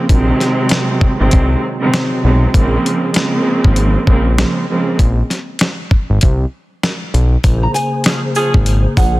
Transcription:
0.09 A#1 C3 D#3 F#3 G#3 C4, kick, closed hi-hat
0.40 snare, closed hi-hat
0.69 snare, closed hi-hat
1.01 kick
1.19 G#1 C3 D#3 F#3 G#3 C4
1.31 C2, kick, closed hi-hat
1.82 C3 D#3 F#3 G#3 C4
1.94 snare, closed hi-hat
2.24 B1 C3 D#3 F#3 G#3 C4
2.53 A#1 C#3 F3 G#3 A#3 C4, kick, closed hi-hat
2.86 closed hi-hat
3.13 C#3 F3 G#3 A#3 C4, snare, closed hi-hat
3.64 G#1, kick
3.76 closed hi-hat
4.06 A#1 C#3 F3 G#3 A#3 C4, kick
4.38 C#3 F3 G#3 A#3 C4, snare, closed hi-hat
4.69 C#3 F3 G#3 A#3 C4
4.99 A#1, kick, closed hi-hat
5.30 snare, closed hi-hat
5.59 snare, closed hi-hat
5.91 kick
6.10 G#1
6.21 C2, kick, closed hi-hat
6.83 snare, closed hi-hat
7.14 B1, closed hi-hat
7.43 A#1 C#3 A#3 G#4 C5, kick, closed hi-hat, sleigh bells
7.63 A#5
7.74 G#5, closed hi-hat, shaker, sleigh bells
8.04 F3 C#4 G#4, snare, closed hi-hat, sleigh bells
8.35 F3 C#4 G#4, shaker, sleigh bells
8.54 G#1, kick
8.66 closed hi-hat, sleigh bells
8.97 A#1 F#5, kick, shaker, sleigh bells

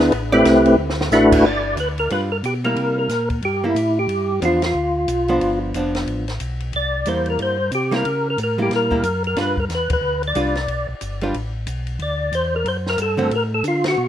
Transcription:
Already playing: D2 B3 D4 E4 G#4 B4 E5
0.12 A1, ride
0.32 A3 C4 E4 G4 B4 D5
0.45 C2, snare, hi-hat pedal, ride
0.66 ride
0.78 D2
0.90 snare
1.01 snare
1.11 A1 A3 D4 E4 F#4 B4, snare, hi-hat pedal
1.32 kick, crash
1.44 G1 D5
1.76 D2 B4, hi-hat pedal, ride
1.98 A#4, ride
2.10 G2 G3 D4 F4 B4, ride
2.32 A#4
2.43 B2 G4, hi-hat pedal, ride
2.64 G3 A#3 E4 A#4, ride
2.76 C3, ride
2.99 A#4
3.09 A#2, snare, hi-hat pedal, ride
3.30 kick, ride
3.42 G2 G4, ride
3.64 G3 A#3 E4
3.75 A2, hi-hat pedal, ride
3.99 G4
4.07 G2, ride
4.41 E2 F3 B3 D4 F4, hi-hat pedal, ride
4.62 F4, snare, ride
4.74 D2
5.08 B1, hi-hat pedal, ride
5.28 F3 B3 D4, ride
5.41 G1, ride
5.74 F1 F3 B3 D4, hi-hat pedal, ride
5.95 snare, ride
6.07 A1, ride
6.28 snare, ride
6.40 B1, hi-hat pedal, ride
6.60 ride
6.73 C2 D5, ride
7.06 E2 G3 A#3 E4 C5, hi-hat pedal, ride
7.26 ride
7.30 A#4
7.39 G2 C5, ride
7.72 C3 G4, hi-hat pedal, ride
7.91 G3 A#3 E4, snare, ride
7.96 A#4
8.05 C#3, ride
8.30 A#4
8.38 A2, hi-hat pedal, ride
8.43 A#4
8.58 G3 A#3 E4
8.62 G4
8.70 A#2, snare, ride
8.76 A#4
8.90 G3 A#3 E4, kick
9.03 F#2, hi-hat pedal, ride
9.24 A#4, ride
9.36 G2 G3 D4 F4 B4, snare, ride
9.41 B4
9.57 A#4, kick
9.69 E2, snare, hi-hat pedal, ride
9.75 B4
9.90 E2 B4, kick, ride
10.01 D2
10.23 ride
10.28 D5
10.35 C2 G3 D4 F4 B4, hi-hat pedal, ride
10.55 snare, ride
10.68 B1, ride
10.89 B1
11.01 G1, hi-hat pedal, ride
11.21 G3 D4 F4 B4, ride
11.34 A1, ride
11.67 B1, hi-hat pedal, ride
11.87 ride
11.99 D2 D5, ride
12.32 E2 C5, hi-hat pedal, ride
12.56 A#4
12.65 F#2 C5, ride
12.87 A#4, snare
12.98 G2 A4, hi-hat pedal, ride
13.17 D3 A3 C4 F#4, ride
13.31 A2, ride
13.35 A#4
13.54 A4
13.64 D3 F4, hi-hat pedal, ride
13.84 snare, ride
13.88 F#4
13.98 B2

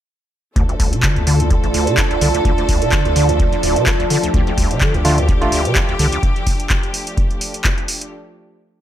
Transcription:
0.56 D2 F3 A3 D4 F4 A4, kick, closed hi-hat
0.69 D2, closed hi-hat
0.79 C2 D2 D5, kick, open hi-hat
0.93 C3, closed hi-hat
1.03 D3, kick, clap, closed hi-hat
1.16 D2 A5, closed hi-hat
1.27 D3, open hi-hat
1.40 D2, closed hi-hat
1.50 F2, kick, closed hi-hat
1.64 A1 D2, closed hi-hat
1.74 D2, open hi-hat
1.87 C3, closed hi-hat
1.97 D2, kick, clap, closed hi-hat
2.11 D2, closed hi-hat
2.21 C2 D3, open hi-hat
2.34 D2, closed hi-hat
2.45 D2, kick, closed hi-hat
2.58 D2, closed hi-hat
2.69 C2 D2, kick, open hi-hat
2.82 C3, closed hi-hat
2.92 D3, kick, clap, closed hi-hat
3.05 D2, closed hi-hat
3.16 D3, open hi-hat
3.29 D2, closed hi-hat
3.39 F2, kick, closed hi-hat
3.52 D2, closed hi-hat
3.63 D1 D2, open hi-hat
3.76 C3, closed hi-hat
3.86 D2, kick, clap, closed hi-hat
4.00 D2, closed hi-hat
4.10 D3, open hi-hat
4.23 D2, closed hi-hat
4.34 D2 G4, kick, closed hi-hat
4.47 D2, closed hi-hat
4.58 C2 D2, kick, open hi-hat
4.71 C3, closed hi-hat
4.81 D3, kick, clap, closed hi-hat
4.94 D2, closed hi-hat
5.05 D3 A3 D4 F4, open hi-hat
5.18 D2, closed hi-hat
5.28 F2, kick, closed hi-hat
5.41 A1 D2 A3 D4 F4, closed hi-hat
5.52 D2, open hi-hat
5.65 C3, closed hi-hat
5.75 D2, kick, clap, closed hi-hat
5.89 D2, closed hi-hat
5.99 C2 D3, open hi-hat
6.12 D2, closed hi-hat
6.23 kick, closed hi-hat
6.36 closed hi-hat
6.47 kick, open hi-hat
6.60 closed hi-hat
6.70 kick, clap, closed hi-hat
6.83 closed hi-hat
6.94 open hi-hat
7.07 closed hi-hat
7.17 kick, closed hi-hat
7.31 closed hi-hat
7.41 open hi-hat
7.54 closed hi-hat
7.64 kick, clap, closed hi-hat
7.78 closed hi-hat
7.88 open hi-hat
8.01 closed hi-hat

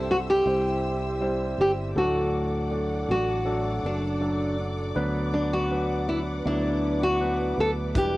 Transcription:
Already playing: C2 G2 G3 C4 E4 G4 A4 C5 E5 E6
0.11 F#4
0.30 G4
0.45 C2 G3 C4 E4 C5
1.20 G3 C4 E4 C5
1.58 G1 G4
1.95 D2 A2 F#3 A3 D4 F#4 A4 D5 F#5 D6
2.70 F#3 A3 D4 F#4
3.09 A1 F#4
3.45 F#3 A3 D4 A4
3.83 F#1 D4
4.20 F#3 A3 D4 A4
4.95 D2 D3 F#3 B3 D4 B4 F#5
5.34 D4
5.53 F#4
5.70 F#3 B3 D4 B4
6.09 E4
6.45 D2 F#3 B3 D4 E4
7.03 F#4
7.20 F#3 B3 D4 B4
7.58 D2 A4
7.95 E1 B2 G3 D4 E4 G4 B4 D5 E5, kick, closed hi-hat

